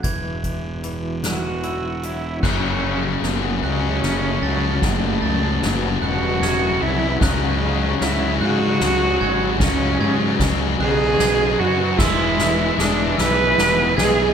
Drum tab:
CC |------|x-----|------|------|
RD |------|-xxxxx|xxxxxx|xxxxxx|
HH |xxxxxx|------|------|------|
SD |---o--|o-o-o-|o-o-o-|o-o-o-|
BD |oo----|o-----|o-----|o-----|

CC |------|x-----|
RD |xxxxxx|-xxxxx|
HH |------|------|
SD |o-o-o-|oooooo|
BD |o-o---|o-----|